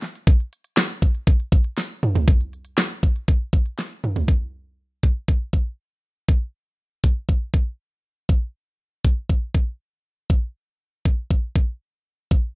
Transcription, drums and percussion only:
0.02 snare soft
0.02 open hi-hat medium
0.15 closed hi-hat medium
0.27 kick loud
0.27 closed hi-hat medium
0.40 closed hi-hat soft
0.53 closed hi-hat medium
0.64 closed hi-hat medium
0.77 snare loud
0.77 closed hi-hat medium
0.77 tambourine medium
0.89 closed hi-hat soft
1.02 kick medium
1.02 closed hi-hat medium
1.15 closed hi-hat soft
1.27 kick medium
1.27 closed hi-hat loud
1.40 closed hi-hat soft
1.52 kick medium
1.52 closed hi-hat medium
1.64 closed hi-hat soft
1.78 snare medium
1.78 closed hi-hat medium
1.78 tambourine medium
2.03 closed hi-hat medium
2.03 mid tom medium
2.15 closed hi-hat medium
2.15 floor tom medium
2.28 kick loud
2.28 closed hi-hat medium
2.41 closed hi-hat soft
2.53 closed hi-hat medium
2.65 closed hi-hat medium
2.78 snare medium
2.78 closed hi-hat medium
3.03 kick medium
3.03 closed hi-hat medium
3.16 closed hi-hat soft
3.28 kick medium
3.28 closed hi-hat medium
3.53 kick medium
3.53 closed hi-hat medium
3.66 closed hi-hat soft
3.79 snare soft
3.79 closed hi-hat medium
3.91 closed hi-hat soft
4.04 closed hi-hat medium
4.04 mid tom medium
4.16 closed hi-hat medium
4.16 floor tom medium
4.28 kick medium
5.03 kick medium
5.28 kick medium
5.53 kick medium
6.29 kick medium
7.04 kick medium
7.29 kick medium
7.54 kick medium
8.29 kick medium
9.05 kick medium
9.29 kick medium
9.55 kick medium
10.30 kick medium
11.05 kick medium
11.31 kick medium
11.56 kick medium
12.31 kick medium

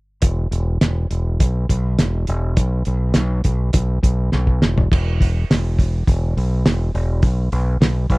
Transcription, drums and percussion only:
0.22 kick medium
0.22 closed hi-hat medium
0.52 closed hi-hat medium
0.81 snare medium
0.81 closed hi-hat medium
1.11 closed hi-hat medium
1.40 kick medium
1.40 closed hi-hat medium
1.69 kick medium
1.69 closed hi-hat medium
1.99 snare medium
1.99 closed hi-hat medium
2.27 closed hi-hat medium
2.57 kick medium
2.57 closed hi-hat medium
2.85 closed hi-hat medium
3.14 snare medium
3.14 closed hi-hat medium
3.44 kick medium
3.44 closed hi-hat medium
3.73 kick loud
3.73 closed hi-hat medium
4.03 kick medium
4.03 closed hi-hat medium
4.32 snare soft
4.47 kick soft
4.62 snare medium
4.78 floor tom medium
4.92 kick loud
4.92 crash medium
5.21 kick medium
5.21 open hi-hat soft
5.51 snare medium
5.51 open hi-hat medium
5.79 kick medium
5.79 open hi-hat medium
6.07 kick medium
6.07 open hi-hat medium
6.38 open hi-hat medium
6.66 snare loud
6.66 open hi-hat medium
6.95 open hi-hat soft
7.22 kick loud
7.22 open hi-hat medium
7.52 open hi-hat soft
7.82 snare loud
7.82 open hi-hat medium
8.10 kick medium
8.10 open hi-hat soft

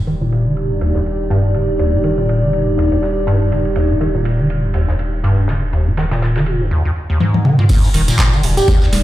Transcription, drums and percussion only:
0.07 ride medium
0.32 ride medium
0.57 ride medium
0.81 ride medium
0.95 snare soft
1.06 ride medium
1.31 ride medium
1.54 ride medium
1.79 ride medium
2.04 ride medium
2.18 ride soft
2.29 ride medium
2.53 ride medium
2.79 ride medium
2.92 ride soft
3.02 snare soft
3.02 ride medium
3.27 ride medium
3.52 ride medium
3.65 ride soft
3.76 ride medium
4.01 ride medium
4.25 ride medium
4.50 ride medium
4.74 ride medium
4.88 snare soft
4.99 ride medium
5.24 ride medium
5.48 snare loud
5.48 ride medium
5.73 ride medium
5.97 snare loud
5.97 ride medium
6.11 snare medium
6.11 ride medium
6.22 snare medium
6.22 ride medium
6.36 snare loud
6.36 ride medium
6.46 ride medium
7.20 high tom medium
7.34 high tom medium
7.45 mid tom medium
7.59 mid tom medium
7.69 kick loud
7.69 closed hi-hat medium
7.69 crash loud
7.69 ride medium
7.69 tambourine medium
7.83 tambourine soft
7.94 open hi-hat loud
7.94 ride medium
8.08 closed hi-hat medium
8.08 tambourine medium
8.18 kick loud
8.18 snare loud
8.18 clap loud
8.18 closed hi-hat medium
8.18 ride medium
8.18 tambourine medium
8.33 tambourine soft
8.43 open hi-hat loud
8.43 ride medium
8.57 closed hi-hat medium
8.57 tambourine medium
8.68 kick loud
8.68 closed hi-hat medium
8.68 ride loud
8.68 tambourine medium
8.82 snare medium
8.82 tambourine soft
8.93 snare soft
8.93 open hi-hat loud
8.93 ride medium

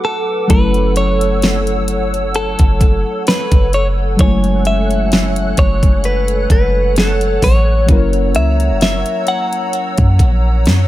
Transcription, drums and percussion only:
0.50 kick loud
0.50 closed hi-hat medium
0.74 closed hi-hat soft
0.96 closed hi-hat medium
1.21 closed hi-hat medium
1.42 snare loud
1.42 closed hi-hat medium
1.67 closed hi-hat medium
1.88 closed hi-hat medium
2.14 closed hi-hat medium
2.35 closed hi-hat medium
2.59 kick loud
2.59 closed hi-hat medium
2.81 kick medium
2.81 closed hi-hat medium
3.27 snare loud
3.27 closed hi-hat medium
3.52 kick loud
3.52 closed hi-hat medium
3.73 closed hi-hat medium
4.19 kick loud
4.19 closed hi-hat medium
4.44 closed hi-hat soft
4.65 closed hi-hat medium
4.91 closed hi-hat medium
5.12 snare loud
5.12 closed hi-hat medium
5.36 closed hi-hat medium
5.57 kick medium
5.57 closed hi-hat medium
5.83 kick medium
5.83 closed hi-hat medium
6.04 closed hi-hat medium
6.28 closed hi-hat medium
6.50 kick loud
6.50 closed hi-hat medium
6.96 snare loud
6.96 closed hi-hat medium
7.21 closed hi-hat medium
7.42 kick loud
7.42 open hi-hat medium
7.89 kick loud
7.89 closed hi-hat medium
8.13 closed hi-hat soft
8.35 closed hi-hat medium
8.60 closed hi-hat medium
8.81 snare loud
8.81 closed hi-hat medium
9.06 closed hi-hat medium
9.27 closed hi-hat medium
9.53 closed hi-hat medium
9.73 closed hi-hat medium
9.98 kick loud
9.98 closed hi-hat medium
10.19 kick medium
10.19 closed hi-hat medium
10.66 snare loud
10.66 closed hi-hat medium

